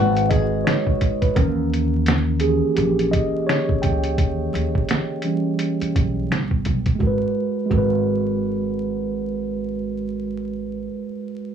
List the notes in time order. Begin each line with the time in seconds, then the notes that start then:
Already playing: G#1 G#3 D#4 F#4
0.00 B4
0.17 closed hi-hat
0.29 G#4 D#5, kick, closed hi-hat
0.65 C#5, finger snap, snare, closed hi-hat
0.87 kick
1.01 kick, closed hi-hat
1.22 B4, kick, closed hi-hat
1.35 D#2 E3 A#3 C#4 A#4, kick, closed hi-hat
1.73 closed hi-hat
2.06 finger snap, snare, closed hi-hat
2.40 E3 C#4 G4 G#4, closed hi-hat
2.76 A#1 G4, closed hi-hat
2.99 closed hi-hat
3.11 D#5, kick, closed hi-hat
3.47 C#5, finger snap, snare, closed hi-hat
3.69 kick
3.82 C#2 G5, kick, closed hi-hat
4.04 closed hi-hat
4.18 D#2, kick, closed hi-hat
4.54 D#2, closed hi-hat
4.75 kick
4.89 finger snap, snare, closed hi-hat
5.22 E3 G3 C#4, closed hi-hat
5.59 closed hi-hat
5.81 muted upright bass stroke, closed hi-hat
5.96 B1, kick, closed hi-hat
6.30 A1 C3 G3 B3, finger snap, snare, closed hi-hat
6.51 kick
6.65 B1, kick, closed hi-hat
6.86 kick, closed hi-hat
6.95 G#3 F#4
7.00 G#1 A#4, kick
7.07 B4
7.66 G#3 F#4
7.71 G#1 A#4, kick
7.77 B4